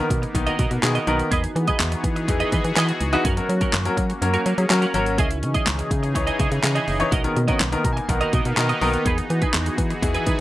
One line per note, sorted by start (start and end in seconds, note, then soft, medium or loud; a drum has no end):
0.00 0.15 D#3 medium
0.00 1.30 A#3 medium
0.00 0.15 B3 medium
0.00 1.30 B3 medium
0.00 3.21 D#4 medium
0.00 0.15 A#4 medium
0.10 0.26 B2 medium
0.10 kick medium
0.10 closed hi-hat medium
0.22 muted clean electric guitar stroke soft
0.22 closed hi-hat soft
0.35 0.50 B1 loud
0.35 0.51 D#3 medium
0.35 0.52 B3 medium
0.35 0.52 D#4 medium
0.35 muted clean electric guitar stroke soft
0.35 kick medium
0.35 closed hi-hat medium
0.47 0.57 F#4 medium
0.47 0.58 A#4 medium
0.47 0.59 D#5 medium
0.47 closed hi-hat soft
0.59 0.67 B2 loud
0.59 0.75 F#4 medium
0.59 0.71 A#4 medium
0.59 0.70 D#5 medium
0.59 kick medium
0.59 closed hi-hat medium
0.71 0.79 B2 medium
0.71 0.77 B3 medium
0.71 0.77 A#4 medium
0.71 muted clean electric guitar stroke medium
0.71 closed hi-hat medium
0.83 0.99 B2 loud
0.83 0.94 D#3 medium
0.83 0.94 B3 medium
0.83 0.94 G#4 loud
0.83 muted clean electric guitar stroke soft
0.83 snare medium
0.83 clap loud
0.83 closed hi-hat medium
0.95 1.06 F#4 medium
0.95 1.07 A#4 medium
0.95 1.08 D#5 medium
0.95 closed hi-hat medium
1.07 1.23 B1 loud
1.07 1.31 D#3 medium
1.07 1.31 B3 medium
1.07 1.24 F#4 medium
1.07 1.32 A#4 loud
1.07 1.19 A#4 medium
1.07 1.18 D#5 medium
1.07 closed hi-hat medium
1.19 muted clean electric guitar stroke soft
1.19 closed hi-hat soft
1.31 1.47 E2 loud
1.31 3.23 E3 medium
1.31 3.23 B3 medium
1.31 5.15 F#4 medium
1.31 1.51 G#4 medium
1.31 3.23 G#4 medium
1.31 1.44 B4 medium
1.31 1.42 D#5 medium
1.31 kick loud
1.31 closed hi-hat medium
1.44 muted clean electric guitar stroke soft
1.44 closed hi-hat medium
1.56 1.71 E3 loud
1.56 muted clean electric guitar stroke soft
1.56 closed hi-hat medium
1.67 1.79 G#4 medium
1.67 1.79 B4 medium
1.67 1.80 D#5 medium
1.67 kick medium
1.67 closed hi-hat medium
1.80 1.96 E2 loud
1.80 snare medium
1.80 clap loud
1.80 closed hi-hat loud
1.92 muted clean electric guitar stroke soft
1.92 closed hi-hat medium
2.04 2.30 E3 medium
2.04 kick loud
2.04 closed hi-hat medium
2.16 muted clean electric guitar stroke soft
2.16 closed hi-hat soft
2.28 2.44 E2 loud
2.28 2.67 E3 medium
2.28 2.67 D#4 medium
2.28 2.67 G#4 medium
2.28 muted clean electric guitar stroke soft
2.28 kick medium
2.28 closed hi-hat medium
2.40 2.51 G#4 medium
2.40 2.52 B4 medium
2.40 2.53 D#5 medium
2.40 closed hi-hat soft
2.52 2.60 E3 loud
2.52 2.69 G#4 medium
2.52 2.65 B4 medium
2.52 2.63 D#5 medium
2.52 kick medium
2.52 closed hi-hat medium
2.64 2.72 E3 loud
2.64 muted clean electric guitar stroke medium
2.64 closed hi-hat medium
2.76 2.92 E3 loud
2.76 2.96 G#4 medium
2.76 2.89 B4 loud
2.76 2.87 D#5 medium
2.76 snare medium
2.76 clap loud
2.76 closed hi-hat medium
2.89 muted clean electric guitar stroke medium
2.89 closed hi-hat medium
3.01 3.17 C#2 loud
3.01 muted clean electric guitar stroke soft
3.01 closed hi-hat medium
3.13 3.24 E3 loud
3.13 3.24 D#4 medium
3.13 3.24 F#4 loud
3.13 3.25 G#4 soft
3.13 3.26 B4 medium
3.13 3.29 D#5 medium
3.13 closed hi-hat soft
3.25 3.41 F#2 loud
3.25 5.17 A#3 medium
3.25 3.44 C#4 loud
3.25 7.08 C#4 medium
3.25 3.37 F#4 medium
3.25 3.36 A#4 loud
3.25 kick loud
3.25 closed hi-hat loud
3.37 3.48 F#3 medium
3.37 3.48 C#4 medium
3.37 3.48 A#4 medium
3.37 muted clean electric guitar stroke soft
3.37 closed hi-hat medium
3.49 3.65 F#3 loud
3.49 muted clean electric guitar stroke soft
3.49 closed hi-hat medium
3.61 3.72 F#3 medium
3.61 3.72 C#4 medium
3.61 3.73 F#4 medium
3.61 3.74 A#4 medium
3.61 3.72 A#4 medium
3.61 kick medium
3.61 closed hi-hat medium
3.73 3.89 F#2 medium
3.73 muted clean electric guitar stroke soft
3.73 snare medium
3.73 clap loud
3.73 closed hi-hat loud
3.85 4.02 F#3 medium
3.85 4.02 C#4 medium
3.85 4.02 A#4 loud
3.85 muted clean electric guitar stroke soft
3.85 closed hi-hat medium
3.97 4.13 F#3 medium
3.97 kick medium
3.97 closed hi-hat medium
4.10 muted clean electric guitar stroke soft
4.10 closed hi-hat soft
4.21 4.38 F#2 loud
4.21 4.38 F#3 medium
4.21 4.39 C#4 medium
4.21 4.39 A#4 medium
4.21 muted clean electric guitar stroke soft
4.21 closed hi-hat medium
4.34 4.44 C#4 medium
4.34 4.46 F#4 medium
4.34 4.46 A#4 medium
4.34 closed hi-hat soft
4.46 4.54 F#3 loud
4.46 4.62 C#4 medium
4.46 4.58 F#4 medium
4.46 4.57 A#4 medium
4.46 closed hi-hat medium
4.58 4.66 F#3 loud
4.58 4.64 C#4 medium
4.58 4.64 G#4 medium
4.58 muted clean electric guitar stroke medium
4.58 closed hi-hat medium
4.70 4.81 F#3 medium
4.70 4.86 F#3 loud
4.70 4.81 C#4 medium
4.70 4.81 A#4 loud
4.70 muted clean electric guitar stroke soft
4.70 snare medium
4.70 clap loud
4.70 closed hi-hat medium
4.82 4.93 C#4 medium
4.82 4.94 F#4 medium
4.82 4.95 A#4 medium
4.82 closed hi-hat medium
4.94 5.20 G#1 medium
4.94 5.18 F#3 medium
4.94 5.18 C#4 medium
4.94 5.11 C#4 medium
4.94 5.06 F#4 medium
4.94 5.19 A#4 loud
4.94 5.05 A#4 medium
4.94 closed hi-hat medium
5.06 muted clean electric guitar stroke soft
5.06 closed hi-hat soft
5.18 5.44 C#2 loud
5.18 7.10 C#3 medium
5.18 7.10 E3 medium
5.18 7.10 D#4 medium
5.18 5.38 E4 medium
5.18 7.10 G#4 medium
5.18 5.31 G#4 medium
5.18 5.29 D#5 medium
5.18 kick loud
5.18 closed hi-hat medium
5.30 muted clean electric guitar stroke soft
5.30 closed hi-hat medium
5.43 5.58 C#3 loud
5.43 muted clean electric guitar stroke soft
5.43 closed hi-hat medium
5.54 5.65 E4 soft
5.54 5.66 G#4 medium
5.54 5.67 D#5 medium
5.54 kick medium
5.54 closed hi-hat medium
5.67 5.83 C#2 loud
5.67 muted clean electric guitar stroke soft
5.67 snare medium
5.67 clap loud
5.67 closed hi-hat loud
5.79 muted clean electric guitar stroke soft
5.79 closed hi-hat medium
5.91 6.17 C#3 loud
5.91 kick medium
5.91 closed hi-hat medium
6.03 muted clean electric guitar stroke soft
6.03 closed hi-hat soft
6.15 6.31 C#2 loud
6.15 6.54 E3 medium
6.15 6.54 D#4 medium
6.15 6.54 C#5 medium
6.15 muted clean electric guitar stroke soft
6.15 kick medium
6.15 closed hi-hat medium
6.27 6.38 E4 medium
6.27 6.39 G#4 medium
6.27 6.40 D#5 medium
6.27 closed hi-hat soft
6.39 6.47 C#3 medium
6.39 6.56 E4 medium
6.39 6.51 G#4 medium
6.39 6.50 D#5 medium
6.39 kick loud
6.39 closed hi-hat medium
6.51 6.59 C#3 loud
6.51 muted clean electric guitar stroke soft
6.51 closed hi-hat medium
6.63 6.80 C#3 loud
6.63 muted clean electric guitar stroke soft
6.63 snare loud
6.63 clap loud
6.63 closed hi-hat medium
6.75 6.86 E4 medium
6.75 6.87 G#4 medium
6.75 6.88 D#5 medium
6.75 closed hi-hat medium
6.87 7.04 F#1 medium
6.87 7.04 E4 medium
6.87 7.00 G#4 medium
6.87 6.98 D#5 medium
6.87 open hi-hat medium
7.00 7.11 E3 loud
7.00 7.11 D#4 medium
7.00 7.11 C#5 loud
7.00 muted clean electric guitar stroke soft
7.00 closed hi-hat medium
7.11 7.28 B1 loud
7.11 9.04 A#3 medium
7.11 10.40 B3 medium
7.11 10.40 D#4 medium
7.11 7.31 F#4 medium
7.11 7.24 A#4 medium
7.11 7.22 D#5 medium
7.11 kick loud
7.11 closed hi-hat loud
7.24 7.35 D#3 medium
7.24 7.35 B3 medium
7.24 7.35 A#4 medium
7.24 muted clean electric guitar stroke soft
7.24 closed hi-hat medium
7.36 7.52 B2 loud
7.36 muted clean electric guitar stroke soft
7.36 closed hi-hat medium
7.48 7.59 D#3 medium
7.48 7.59 B3 medium
7.48 7.60 C#4 medium
7.48 7.59 F#4 medium
7.48 7.60 A#4 medium
7.48 7.60 D#5 medium
7.48 kick medium
7.48 closed hi-hat medium
7.60 7.76 B1 loud
7.60 muted clean electric guitar stroke soft
7.60 snare medium
7.60 clap loud
7.60 closed hi-hat loud
7.72 7.89 D#3 medium
7.72 7.89 B3 medium
7.72 7.89 A#4 medium
7.72 muted clean electric guitar stroke soft
7.72 closed hi-hat medium
7.84 8.00 B2 medium
7.84 7.92 A#5 medium
7.84 kick loud
7.84 closed hi-hat medium
7.93 8.08 G#5 medium
7.97 muted clean electric guitar stroke medium
7.97 closed hi-hat soft
8.09 8.25 B1 loud
8.09 8.26 D#3 medium
8.09 8.26 B3 medium
8.09 8.26 A#4 medium
8.09 8.54 F#5 medium
8.09 muted clean electric guitar stroke soft
8.09 kick medium
8.09 closed hi-hat medium
8.21 8.32 F#4 medium
8.21 8.33 A#4 medium
8.21 8.34 D#5 medium
8.21 closed hi-hat soft
8.33 8.41 B2 loud
8.33 8.49 F#4 medium
8.33 8.45 A#4 medium
8.33 8.44 D#5 medium
8.33 kick loud
8.33 closed hi-hat medium
8.45 8.53 B2 loud
8.45 8.51 B3 medium
8.45 8.51 A#4 medium
8.45 muted clean electric guitar stroke soft
8.45 closed hi-hat medium
8.57 8.73 B2 loud
8.57 8.68 D#3 medium
8.57 8.68 B3 medium
8.57 8.69 A#4 loud
8.57 9.02 D#5 medium
8.57 muted clean electric guitar stroke soft
8.57 snare medium
8.57 clap loud
8.57 closed hi-hat medium
8.69 8.80 F#4 medium
8.69 8.81 A#4 medium
8.69 8.82 D#5 medium
8.69 closed hi-hat medium
8.81 8.97 B1 loud
8.81 9.05 D#3 medium
8.81 9.06 B3 medium
8.81 8.98 F#4 medium
8.81 9.06 A#4 loud
8.81 8.94 A#4 medium
8.81 8.92 D#5 medium
8.81 open hi-hat medium
8.94 muted clean electric guitar stroke medium
8.94 closed hi-hat medium
9.05 9.21 E2 loud
9.05 10.40 E3 medium
9.05 9.25 D#4 medium
9.05 10.40 F#4 medium
9.05 10.40 G#4 medium
9.05 9.18 G#4 medium
9.05 9.17 B4 medium
9.05 kick loud
9.05 closed hi-hat loud
9.18 muted clean electric guitar stroke medium
9.18 closed hi-hat medium
9.30 9.46 E3 loud
9.30 muted clean electric guitar stroke soft
9.30 closed hi-hat medium
9.42 9.53 D#4 medium
9.42 9.54 G#4 medium
9.42 9.54 B4 medium
9.42 kick medium
9.42 closed hi-hat medium
9.54 9.70 E2 loud
9.54 muted clean electric guitar stroke soft
9.54 snare medium
9.54 clap loud
9.54 closed hi-hat loud
9.66 muted clean electric guitar stroke medium
9.66 closed hi-hat medium
9.78 9.94 E3 loud
9.78 kick loud
9.78 closed hi-hat medium
9.90 muted clean electric guitar stroke soft
9.90 closed hi-hat soft
10.02 10.18 E2 loud
10.02 10.40 E3 medium
10.02 10.40 D#4 medium
10.02 10.40 G#4 medium
10.02 muted clean electric guitar stroke soft
10.02 kick medium
10.02 closed hi-hat medium
10.14 10.25 D#4 medium
10.14 10.26 G#4 medium
10.14 10.27 B4 medium
10.14 closed hi-hat soft
10.26 10.35 E3 loud
10.26 10.40 D#4 medium
10.26 10.39 G#4 medium
10.26 10.37 B4 medium
10.26 kick loud
10.26 closed hi-hat medium